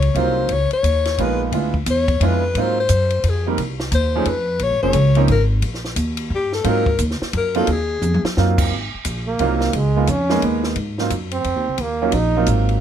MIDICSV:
0, 0, Header, 1, 7, 480
1, 0, Start_track
1, 0, Tempo, 342270
1, 693, Time_signature, 3, 2, 24, 8
1, 17956, End_track
2, 0, Start_track
2, 0, Title_t, "Alto saxophone"
2, 0, Program_c, 0, 65
2, 0, Note_on_c, 0, 73, 87
2, 259, Note_on_c, 0, 72, 85
2, 280, Note_off_c, 0, 73, 0
2, 735, Note_on_c, 0, 73, 96
2, 756, Note_off_c, 0, 72, 0
2, 1018, Note_off_c, 0, 73, 0
2, 1028, Note_on_c, 0, 73, 104
2, 1716, Note_on_c, 0, 71, 86
2, 1737, Note_off_c, 0, 73, 0
2, 1988, Note_off_c, 0, 71, 0
2, 2671, Note_on_c, 0, 73, 94
2, 3174, Note_on_c, 0, 71, 84
2, 3195, Note_off_c, 0, 73, 0
2, 3658, Note_on_c, 0, 72, 87
2, 3679, Note_off_c, 0, 71, 0
2, 3919, Note_off_c, 0, 72, 0
2, 3926, Note_on_c, 0, 72, 101
2, 4621, Note_on_c, 0, 68, 78
2, 4643, Note_off_c, 0, 72, 0
2, 4881, Note_off_c, 0, 68, 0
2, 5536, Note_on_c, 0, 72, 98
2, 6004, Note_on_c, 0, 71, 88
2, 6025, Note_off_c, 0, 72, 0
2, 6496, Note_on_c, 0, 73, 100
2, 6517, Note_off_c, 0, 71, 0
2, 6762, Note_off_c, 0, 73, 0
2, 6770, Note_on_c, 0, 73, 95
2, 7374, Note_off_c, 0, 73, 0
2, 7455, Note_on_c, 0, 70, 98
2, 7625, Note_off_c, 0, 70, 0
2, 8905, Note_on_c, 0, 67, 82
2, 9163, Note_off_c, 0, 67, 0
2, 9182, Note_on_c, 0, 69, 89
2, 9388, Note_on_c, 0, 70, 87
2, 9409, Note_off_c, 0, 69, 0
2, 9840, Note_off_c, 0, 70, 0
2, 10334, Note_on_c, 0, 70, 84
2, 10597, Note_off_c, 0, 70, 0
2, 10621, Note_on_c, 0, 69, 85
2, 10825, Note_on_c, 0, 68, 83
2, 10846, Note_off_c, 0, 69, 0
2, 11583, Note_off_c, 0, 68, 0
2, 17956, End_track
3, 0, Start_track
3, 0, Title_t, "Grand piano"
3, 0, Program_c, 1, 0
3, 212, Note_on_c, 1, 54, 67
3, 220, Note_on_c, 1, 58, 62
3, 229, Note_on_c, 1, 63, 63
3, 230, Note_on_c, 1, 60, 63
3, 230, Note_on_c, 1, 65, 77
3, 693, Note_off_c, 1, 54, 0
3, 697, Note_off_c, 1, 58, 0
3, 701, Note_off_c, 1, 60, 0
3, 701, Note_off_c, 1, 63, 0
3, 701, Note_off_c, 1, 65, 0
3, 1669, Note_on_c, 1, 56, 64
3, 1673, Note_on_c, 1, 58, 55
3, 1673, Note_on_c, 1, 63, 60
3, 1673, Note_on_c, 1, 65, 72
3, 1675, Note_on_c, 1, 59, 64
3, 2123, Note_off_c, 1, 56, 0
3, 2133, Note_off_c, 1, 59, 0
3, 2137, Note_off_c, 1, 65, 0
3, 2143, Note_off_c, 1, 58, 0
3, 2143, Note_off_c, 1, 63, 0
3, 2144, Note_on_c, 1, 56, 52
3, 2146, Note_on_c, 1, 62, 43
3, 2154, Note_on_c, 1, 59, 51
3, 2156, Note_on_c, 1, 64, 54
3, 2158, Note_on_c, 1, 65, 63
3, 2412, Note_off_c, 1, 56, 0
3, 2413, Note_off_c, 1, 62, 0
3, 2417, Note_off_c, 1, 59, 0
3, 2418, Note_off_c, 1, 64, 0
3, 2419, Note_off_c, 1, 65, 0
3, 3114, Note_on_c, 1, 62, 59
3, 3115, Note_on_c, 1, 56, 62
3, 3118, Note_on_c, 1, 59, 64
3, 3119, Note_on_c, 1, 64, 65
3, 3130, Note_on_c, 1, 65, 75
3, 3377, Note_off_c, 1, 62, 0
3, 3378, Note_off_c, 1, 56, 0
3, 3379, Note_off_c, 1, 59, 0
3, 3379, Note_off_c, 1, 64, 0
3, 3385, Note_off_c, 1, 65, 0
3, 3601, Note_on_c, 1, 54, 60
3, 3607, Note_on_c, 1, 60, 57
3, 3609, Note_on_c, 1, 58, 59
3, 3617, Note_on_c, 1, 63, 56
3, 3620, Note_on_c, 1, 65, 69
3, 3860, Note_off_c, 1, 54, 0
3, 3864, Note_off_c, 1, 58, 0
3, 3864, Note_off_c, 1, 60, 0
3, 3869, Note_off_c, 1, 63, 0
3, 3870, Note_off_c, 1, 65, 0
3, 4861, Note_on_c, 1, 58, 61
3, 4867, Note_on_c, 1, 55, 69
3, 4870, Note_on_c, 1, 60, 56
3, 4871, Note_on_c, 1, 70, 75
3, 4872, Note_on_c, 1, 63, 57
3, 5007, Note_off_c, 1, 58, 0
3, 5011, Note_off_c, 1, 55, 0
3, 5012, Note_off_c, 1, 60, 0
3, 5012, Note_off_c, 1, 70, 0
3, 5013, Note_off_c, 1, 63, 0
3, 5827, Note_on_c, 1, 53, 81
3, 5836, Note_on_c, 1, 57, 69
3, 5840, Note_on_c, 1, 63, 69
3, 5840, Note_on_c, 1, 68, 77
3, 5841, Note_on_c, 1, 61, 74
3, 5970, Note_off_c, 1, 53, 0
3, 5975, Note_off_c, 1, 57, 0
3, 5977, Note_off_c, 1, 61, 0
3, 5977, Note_off_c, 1, 63, 0
3, 5977, Note_off_c, 1, 68, 0
3, 6770, Note_on_c, 1, 58, 62
3, 6776, Note_on_c, 1, 53, 70
3, 6779, Note_on_c, 1, 61, 57
3, 6781, Note_on_c, 1, 60, 65
3, 6784, Note_on_c, 1, 68, 75
3, 6922, Note_off_c, 1, 58, 0
3, 6925, Note_off_c, 1, 53, 0
3, 6926, Note_off_c, 1, 61, 0
3, 6927, Note_off_c, 1, 60, 0
3, 6929, Note_off_c, 1, 68, 0
3, 7243, Note_on_c, 1, 53, 77
3, 7246, Note_on_c, 1, 58, 82
3, 7247, Note_on_c, 1, 60, 71
3, 7252, Note_on_c, 1, 61, 76
3, 7254, Note_on_c, 1, 63, 92
3, 7398, Note_off_c, 1, 53, 0
3, 7400, Note_off_c, 1, 58, 0
3, 7400, Note_off_c, 1, 60, 0
3, 7403, Note_off_c, 1, 61, 0
3, 7404, Note_off_c, 1, 63, 0
3, 9314, Note_on_c, 1, 54, 82
3, 9317, Note_on_c, 1, 58, 68
3, 9321, Note_on_c, 1, 63, 72
3, 9325, Note_on_c, 1, 60, 71
3, 9326, Note_on_c, 1, 65, 82
3, 9597, Note_off_c, 1, 54, 0
3, 9599, Note_off_c, 1, 58, 0
3, 9601, Note_off_c, 1, 63, 0
3, 9603, Note_off_c, 1, 60, 0
3, 9603, Note_off_c, 1, 65, 0
3, 10592, Note_on_c, 1, 58, 76
3, 10596, Note_on_c, 1, 60, 71
3, 10598, Note_on_c, 1, 54, 79
3, 10599, Note_on_c, 1, 65, 96
3, 10609, Note_on_c, 1, 63, 73
3, 10753, Note_off_c, 1, 58, 0
3, 10754, Note_off_c, 1, 60, 0
3, 10756, Note_off_c, 1, 54, 0
3, 10756, Note_off_c, 1, 65, 0
3, 10761, Note_off_c, 1, 63, 0
3, 11745, Note_on_c, 1, 54, 67
3, 11749, Note_on_c, 1, 60, 69
3, 11750, Note_on_c, 1, 58, 72
3, 11755, Note_on_c, 1, 63, 61
3, 11755, Note_on_c, 1, 65, 77
3, 12219, Note_off_c, 1, 54, 0
3, 12221, Note_off_c, 1, 58, 0
3, 12221, Note_off_c, 1, 60, 0
3, 12224, Note_off_c, 1, 63, 0
3, 12224, Note_off_c, 1, 65, 0
3, 13179, Note_on_c, 1, 54, 71
3, 13182, Note_on_c, 1, 58, 72
3, 13184, Note_on_c, 1, 65, 90
3, 13191, Note_on_c, 1, 60, 67
3, 13195, Note_on_c, 1, 63, 70
3, 13656, Note_off_c, 1, 54, 0
3, 13658, Note_off_c, 1, 58, 0
3, 13659, Note_off_c, 1, 65, 0
3, 13662, Note_off_c, 1, 60, 0
3, 13664, Note_off_c, 1, 63, 0
3, 13973, Note_on_c, 1, 56, 66
3, 13976, Note_on_c, 1, 58, 61
3, 13979, Note_on_c, 1, 59, 58
3, 13984, Note_on_c, 1, 63, 58
3, 13987, Note_on_c, 1, 65, 69
3, 14123, Note_off_c, 1, 56, 0
3, 14125, Note_off_c, 1, 58, 0
3, 14127, Note_off_c, 1, 59, 0
3, 14129, Note_off_c, 1, 63, 0
3, 14131, Note_off_c, 1, 65, 0
3, 14447, Note_on_c, 1, 58, 77
3, 14449, Note_on_c, 1, 56, 89
3, 14453, Note_on_c, 1, 63, 72
3, 14454, Note_on_c, 1, 59, 71
3, 14459, Note_on_c, 1, 68, 91
3, 15063, Note_off_c, 1, 58, 0
3, 15064, Note_off_c, 1, 56, 0
3, 15066, Note_off_c, 1, 59, 0
3, 15066, Note_off_c, 1, 63, 0
3, 15069, Note_off_c, 1, 68, 0
3, 15418, Note_on_c, 1, 54, 59
3, 15426, Note_on_c, 1, 58, 60
3, 15426, Note_on_c, 1, 60, 64
3, 15430, Note_on_c, 1, 65, 73
3, 15432, Note_on_c, 1, 63, 59
3, 15566, Note_off_c, 1, 54, 0
3, 15570, Note_off_c, 1, 58, 0
3, 15570, Note_off_c, 1, 60, 0
3, 15572, Note_off_c, 1, 65, 0
3, 15573, Note_off_c, 1, 63, 0
3, 16855, Note_on_c, 1, 61, 74
3, 16860, Note_on_c, 1, 54, 70
3, 16861, Note_on_c, 1, 65, 71
3, 16862, Note_on_c, 1, 58, 66
3, 16865, Note_on_c, 1, 63, 67
3, 17005, Note_off_c, 1, 61, 0
3, 17007, Note_off_c, 1, 54, 0
3, 17008, Note_off_c, 1, 58, 0
3, 17008, Note_off_c, 1, 65, 0
3, 17009, Note_off_c, 1, 63, 0
3, 17334, Note_on_c, 1, 54, 73
3, 17349, Note_on_c, 1, 60, 65
3, 17350, Note_on_c, 1, 58, 69
3, 17350, Note_on_c, 1, 63, 63
3, 17350, Note_on_c, 1, 65, 75
3, 17946, Note_off_c, 1, 54, 0
3, 17954, Note_off_c, 1, 58, 0
3, 17954, Note_off_c, 1, 60, 0
3, 17954, Note_off_c, 1, 63, 0
3, 17954, Note_off_c, 1, 65, 0
3, 17956, End_track
4, 0, Start_track
4, 0, Title_t, "Trombone"
4, 0, Program_c, 2, 57
4, 13003, Note_on_c, 2, 58, 69
4, 13682, Note_on_c, 2, 56, 76
4, 13703, Note_off_c, 2, 58, 0
4, 14156, Note_on_c, 2, 61, 87
4, 14177, Note_off_c, 2, 56, 0
4, 14625, Note_off_c, 2, 61, 0
4, 15879, Note_on_c, 2, 60, 79
4, 16563, Note_on_c, 2, 58, 84
4, 16584, Note_off_c, 2, 60, 0
4, 17022, Note_on_c, 2, 63, 104
4, 17043, Note_off_c, 2, 58, 0
4, 17497, Note_off_c, 2, 63, 0
4, 17956, End_track
5, 0, Start_track
5, 0, Title_t, "Upright bass"
5, 0, Program_c, 3, 32
5, 0, Note_on_c, 3, 37, 100
5, 196, Note_off_c, 3, 37, 0
5, 203, Note_on_c, 3, 36, 94
5, 674, Note_off_c, 3, 36, 0
5, 684, Note_on_c, 3, 37, 78
5, 971, Note_off_c, 3, 37, 0
5, 1165, Note_on_c, 3, 39, 88
5, 1634, Note_off_c, 3, 39, 0
5, 1653, Note_on_c, 3, 34, 91
5, 2115, Note_off_c, 3, 34, 0
5, 2124, Note_on_c, 3, 38, 75
5, 2594, Note_off_c, 3, 38, 0
5, 2612, Note_on_c, 3, 40, 100
5, 3078, Note_off_c, 3, 40, 0
5, 3090, Note_on_c, 3, 41, 98
5, 3557, Note_off_c, 3, 41, 0
5, 3573, Note_on_c, 3, 44, 85
5, 4038, Note_off_c, 3, 44, 0
5, 4055, Note_on_c, 3, 42, 100
5, 4519, Note_off_c, 3, 42, 0
5, 4535, Note_on_c, 3, 41, 88
5, 5000, Note_off_c, 3, 41, 0
5, 5019, Note_on_c, 3, 36, 80
5, 5482, Note_off_c, 3, 36, 0
5, 5491, Note_on_c, 3, 39, 100
5, 5957, Note_off_c, 3, 39, 0
5, 5967, Note_on_c, 3, 41, 90
5, 6436, Note_off_c, 3, 41, 0
5, 6451, Note_on_c, 3, 34, 71
5, 6600, Note_on_c, 3, 32, 65
5, 6621, Note_off_c, 3, 34, 0
5, 6763, Note_off_c, 3, 32, 0
5, 6771, Note_on_c, 3, 29, 69
5, 6914, Note_off_c, 3, 29, 0
5, 6922, Note_on_c, 3, 37, 104
5, 7393, Note_off_c, 3, 37, 0
5, 7406, Note_on_c, 3, 32, 93
5, 7875, Note_off_c, 3, 32, 0
5, 7881, Note_on_c, 3, 34, 74
5, 8353, Note_off_c, 3, 34, 0
5, 8358, Note_on_c, 3, 39, 103
5, 8831, Note_off_c, 3, 39, 0
5, 8837, Note_on_c, 3, 43, 88
5, 9310, Note_off_c, 3, 43, 0
5, 9321, Note_on_c, 3, 44, 81
5, 9792, Note_off_c, 3, 44, 0
5, 9801, Note_on_c, 3, 39, 94
5, 10089, Note_off_c, 3, 39, 0
5, 10286, Note_on_c, 3, 42, 102
5, 10755, Note_off_c, 3, 42, 0
5, 10762, Note_on_c, 3, 39, 89
5, 11233, Note_off_c, 3, 39, 0
5, 11242, Note_on_c, 3, 41, 94
5, 11530, Note_off_c, 3, 41, 0
5, 11740, Note_on_c, 3, 42, 95
5, 12202, Note_off_c, 3, 42, 0
5, 12209, Note_on_c, 3, 32, 72
5, 12493, Note_off_c, 3, 32, 0
5, 12696, Note_on_c, 3, 34, 93
5, 13160, Note_off_c, 3, 34, 0
5, 13177, Note_on_c, 3, 36, 76
5, 13641, Note_off_c, 3, 36, 0
5, 13657, Note_on_c, 3, 37, 82
5, 14121, Note_off_c, 3, 37, 0
5, 14133, Note_on_c, 3, 41, 96
5, 14599, Note_off_c, 3, 41, 0
5, 14616, Note_on_c, 3, 39, 86
5, 15081, Note_off_c, 3, 39, 0
5, 15087, Note_on_c, 3, 44, 83
5, 15556, Note_off_c, 3, 44, 0
5, 15573, Note_on_c, 3, 42, 98
5, 16039, Note_off_c, 3, 42, 0
5, 16055, Note_on_c, 3, 41, 84
5, 16210, Note_off_c, 3, 41, 0
5, 16210, Note_on_c, 3, 39, 58
5, 16356, Note_off_c, 3, 39, 0
5, 16365, Note_on_c, 3, 36, 58
5, 16514, Note_off_c, 3, 36, 0
5, 16522, Note_on_c, 3, 39, 79
5, 16993, Note_off_c, 3, 39, 0
5, 17003, Note_on_c, 3, 34, 95
5, 17473, Note_off_c, 3, 34, 0
5, 17480, Note_on_c, 3, 32, 96
5, 17952, Note_off_c, 3, 32, 0
5, 17956, End_track
6, 0, Start_track
6, 0, Title_t, "Muted upright bass strokes"
6, 1010, Note_on_c, 9, 29, 40
6, 1150, Note_off_c, 9, 29, 0
6, 10112, Note_on_c, 9, 29, 42
6, 10252, Note_off_c, 9, 29, 0
6, 11548, Note_on_c, 9, 29, 38
6, 11688, Note_off_c, 9, 29, 0
6, 12542, Note_on_c, 9, 29, 37
6, 12682, Note_off_c, 9, 29, 0
6, 17956, End_track
7, 0, Start_track
7, 0, Title_t, "Drums"
7, 31, Note_on_c, 9, 51, 50
7, 172, Note_off_c, 9, 51, 0
7, 208, Note_on_c, 9, 36, 19
7, 215, Note_on_c, 9, 51, 54
7, 349, Note_off_c, 9, 36, 0
7, 355, Note_off_c, 9, 51, 0
7, 681, Note_on_c, 9, 51, 64
7, 688, Note_on_c, 9, 36, 19
7, 821, Note_off_c, 9, 51, 0
7, 829, Note_off_c, 9, 36, 0
7, 990, Note_on_c, 9, 51, 42
7, 1130, Note_off_c, 9, 51, 0
7, 1174, Note_on_c, 9, 36, 19
7, 1176, Note_on_c, 9, 44, 57
7, 1176, Note_on_c, 9, 51, 68
7, 1314, Note_off_c, 9, 36, 0
7, 1317, Note_off_c, 9, 44, 0
7, 1317, Note_off_c, 9, 51, 0
7, 1477, Note_on_c, 9, 51, 44
7, 1484, Note_on_c, 9, 38, 40
7, 1618, Note_off_c, 9, 51, 0
7, 1625, Note_off_c, 9, 38, 0
7, 1656, Note_on_c, 9, 36, 24
7, 1659, Note_on_c, 9, 51, 55
7, 1796, Note_off_c, 9, 36, 0
7, 1800, Note_off_c, 9, 51, 0
7, 2137, Note_on_c, 9, 36, 28
7, 2137, Note_on_c, 9, 51, 55
7, 2277, Note_off_c, 9, 36, 0
7, 2277, Note_off_c, 9, 51, 0
7, 2438, Note_on_c, 9, 36, 48
7, 2578, Note_off_c, 9, 36, 0
7, 2610, Note_on_c, 9, 44, 61
7, 2610, Note_on_c, 9, 51, 72
7, 2616, Note_on_c, 9, 36, 22
7, 2751, Note_off_c, 9, 44, 0
7, 2751, Note_off_c, 9, 51, 0
7, 2756, Note_off_c, 9, 36, 0
7, 2919, Note_on_c, 9, 51, 47
7, 2920, Note_on_c, 9, 36, 65
7, 3059, Note_off_c, 9, 51, 0
7, 3060, Note_off_c, 9, 36, 0
7, 3096, Note_on_c, 9, 51, 71
7, 3097, Note_on_c, 9, 36, 20
7, 3236, Note_off_c, 9, 51, 0
7, 3238, Note_off_c, 9, 36, 0
7, 3574, Note_on_c, 9, 51, 59
7, 3579, Note_on_c, 9, 36, 23
7, 3714, Note_off_c, 9, 51, 0
7, 3719, Note_off_c, 9, 36, 0
7, 4047, Note_on_c, 9, 44, 61
7, 4047, Note_on_c, 9, 51, 70
7, 4058, Note_on_c, 9, 36, 21
7, 4187, Note_off_c, 9, 44, 0
7, 4187, Note_off_c, 9, 51, 0
7, 4198, Note_off_c, 9, 36, 0
7, 4352, Note_on_c, 9, 51, 47
7, 4492, Note_off_c, 9, 51, 0
7, 4536, Note_on_c, 9, 51, 66
7, 4539, Note_on_c, 9, 36, 21
7, 4676, Note_off_c, 9, 51, 0
7, 4679, Note_off_c, 9, 36, 0
7, 5017, Note_on_c, 9, 51, 63
7, 5019, Note_on_c, 9, 36, 22
7, 5157, Note_off_c, 9, 51, 0
7, 5159, Note_off_c, 9, 36, 0
7, 5323, Note_on_c, 9, 38, 55
7, 5464, Note_off_c, 9, 38, 0
7, 5492, Note_on_c, 9, 44, 61
7, 5492, Note_on_c, 9, 51, 67
7, 5497, Note_on_c, 9, 36, 21
7, 5632, Note_off_c, 9, 44, 0
7, 5632, Note_off_c, 9, 51, 0
7, 5637, Note_off_c, 9, 36, 0
7, 5965, Note_on_c, 9, 51, 63
7, 5974, Note_on_c, 9, 36, 22
7, 6105, Note_off_c, 9, 51, 0
7, 6114, Note_off_c, 9, 36, 0
7, 6442, Note_on_c, 9, 51, 61
7, 6452, Note_on_c, 9, 36, 19
7, 6582, Note_off_c, 9, 51, 0
7, 6592, Note_off_c, 9, 36, 0
7, 6914, Note_on_c, 9, 44, 57
7, 6914, Note_on_c, 9, 51, 72
7, 6928, Note_on_c, 9, 36, 24
7, 7055, Note_off_c, 9, 44, 0
7, 7055, Note_off_c, 9, 51, 0
7, 7068, Note_off_c, 9, 36, 0
7, 7223, Note_on_c, 9, 51, 45
7, 7363, Note_off_c, 9, 51, 0
7, 7404, Note_on_c, 9, 51, 63
7, 7409, Note_on_c, 9, 36, 21
7, 7544, Note_off_c, 9, 51, 0
7, 7549, Note_off_c, 9, 36, 0
7, 7883, Note_on_c, 9, 51, 63
7, 7887, Note_on_c, 9, 36, 21
7, 8023, Note_off_c, 9, 51, 0
7, 8028, Note_off_c, 9, 36, 0
7, 8053, Note_on_c, 9, 38, 29
7, 8193, Note_off_c, 9, 38, 0
7, 8199, Note_on_c, 9, 38, 38
7, 8340, Note_off_c, 9, 38, 0
7, 8359, Note_on_c, 9, 44, 67
7, 8359, Note_on_c, 9, 51, 69
7, 8364, Note_on_c, 9, 36, 22
7, 8500, Note_off_c, 9, 44, 0
7, 8500, Note_off_c, 9, 51, 0
7, 8505, Note_off_c, 9, 36, 0
7, 8652, Note_on_c, 9, 51, 65
7, 8792, Note_off_c, 9, 51, 0
7, 8841, Note_on_c, 9, 36, 23
7, 8981, Note_off_c, 9, 36, 0
7, 9150, Note_on_c, 9, 38, 36
7, 9290, Note_off_c, 9, 38, 0
7, 9317, Note_on_c, 9, 51, 66
7, 9320, Note_on_c, 9, 36, 25
7, 9457, Note_off_c, 9, 51, 0
7, 9460, Note_off_c, 9, 36, 0
7, 9626, Note_on_c, 9, 36, 57
7, 9766, Note_off_c, 9, 36, 0
7, 9796, Note_on_c, 9, 44, 60
7, 9796, Note_on_c, 9, 51, 63
7, 9801, Note_on_c, 9, 36, 25
7, 9936, Note_off_c, 9, 44, 0
7, 9936, Note_off_c, 9, 51, 0
7, 9941, Note_off_c, 9, 36, 0
7, 9968, Note_on_c, 9, 38, 28
7, 10108, Note_off_c, 9, 38, 0
7, 10123, Note_on_c, 9, 38, 50
7, 10263, Note_off_c, 9, 38, 0
7, 10281, Note_on_c, 9, 51, 64
7, 10285, Note_on_c, 9, 36, 21
7, 10421, Note_off_c, 9, 51, 0
7, 10425, Note_off_c, 9, 36, 0
7, 10580, Note_on_c, 9, 51, 46
7, 10721, Note_off_c, 9, 51, 0
7, 10756, Note_on_c, 9, 51, 61
7, 10765, Note_on_c, 9, 36, 22
7, 10897, Note_off_c, 9, 51, 0
7, 10905, Note_off_c, 9, 36, 0
7, 11245, Note_on_c, 9, 44, 65
7, 11252, Note_on_c, 9, 48, 51
7, 11386, Note_off_c, 9, 44, 0
7, 11393, Note_off_c, 9, 48, 0
7, 11419, Note_on_c, 9, 47, 71
7, 11559, Note_off_c, 9, 47, 0
7, 11568, Note_on_c, 9, 38, 88
7, 11709, Note_off_c, 9, 38, 0
7, 11738, Note_on_c, 9, 38, 52
7, 11878, Note_off_c, 9, 38, 0
7, 12035, Note_on_c, 9, 36, 72
7, 12036, Note_on_c, 9, 49, 83
7, 12176, Note_off_c, 9, 36, 0
7, 12177, Note_off_c, 9, 49, 0
7, 12212, Note_on_c, 9, 36, 23
7, 12352, Note_off_c, 9, 36, 0
7, 12686, Note_on_c, 9, 44, 50
7, 12686, Note_on_c, 9, 51, 69
7, 12697, Note_on_c, 9, 36, 25
7, 12826, Note_off_c, 9, 44, 0
7, 12826, Note_off_c, 9, 51, 0
7, 12838, Note_off_c, 9, 36, 0
7, 13168, Note_on_c, 9, 51, 58
7, 13177, Note_on_c, 9, 36, 21
7, 13308, Note_off_c, 9, 51, 0
7, 13317, Note_off_c, 9, 36, 0
7, 13472, Note_on_c, 9, 38, 59
7, 13613, Note_off_c, 9, 38, 0
7, 13646, Note_on_c, 9, 51, 67
7, 13655, Note_on_c, 9, 36, 23
7, 13787, Note_off_c, 9, 51, 0
7, 13795, Note_off_c, 9, 36, 0
7, 14126, Note_on_c, 9, 44, 51
7, 14126, Note_on_c, 9, 51, 65
7, 14137, Note_on_c, 9, 36, 20
7, 14266, Note_off_c, 9, 44, 0
7, 14266, Note_off_c, 9, 51, 0
7, 14278, Note_off_c, 9, 36, 0
7, 14437, Note_on_c, 9, 38, 56
7, 14578, Note_off_c, 9, 38, 0
7, 14614, Note_on_c, 9, 51, 56
7, 14619, Note_on_c, 9, 36, 19
7, 14754, Note_off_c, 9, 51, 0
7, 14759, Note_off_c, 9, 36, 0
7, 14916, Note_on_c, 9, 38, 48
7, 15056, Note_off_c, 9, 38, 0
7, 15083, Note_on_c, 9, 51, 62
7, 15092, Note_on_c, 9, 36, 27
7, 15224, Note_off_c, 9, 51, 0
7, 15232, Note_off_c, 9, 36, 0
7, 15403, Note_on_c, 9, 38, 42
7, 15543, Note_off_c, 9, 38, 0
7, 15570, Note_on_c, 9, 44, 60
7, 15570, Note_on_c, 9, 51, 59
7, 15573, Note_on_c, 9, 36, 17
7, 15710, Note_off_c, 9, 44, 0
7, 15710, Note_off_c, 9, 51, 0
7, 15713, Note_off_c, 9, 36, 0
7, 15866, Note_on_c, 9, 51, 52
7, 16006, Note_off_c, 9, 51, 0
7, 16048, Note_on_c, 9, 51, 57
7, 16052, Note_on_c, 9, 36, 21
7, 16188, Note_off_c, 9, 51, 0
7, 16192, Note_off_c, 9, 36, 0
7, 16515, Note_on_c, 9, 51, 63
7, 16527, Note_on_c, 9, 36, 23
7, 16655, Note_off_c, 9, 51, 0
7, 16667, Note_off_c, 9, 36, 0
7, 16995, Note_on_c, 9, 51, 67
7, 17002, Note_on_c, 9, 36, 18
7, 17136, Note_off_c, 9, 51, 0
7, 17143, Note_off_c, 9, 36, 0
7, 17480, Note_on_c, 9, 44, 63
7, 17480, Note_on_c, 9, 51, 66
7, 17486, Note_on_c, 9, 36, 24
7, 17620, Note_off_c, 9, 44, 0
7, 17620, Note_off_c, 9, 51, 0
7, 17627, Note_off_c, 9, 36, 0
7, 17792, Note_on_c, 9, 51, 41
7, 17932, Note_off_c, 9, 51, 0
7, 17956, End_track
0, 0, End_of_file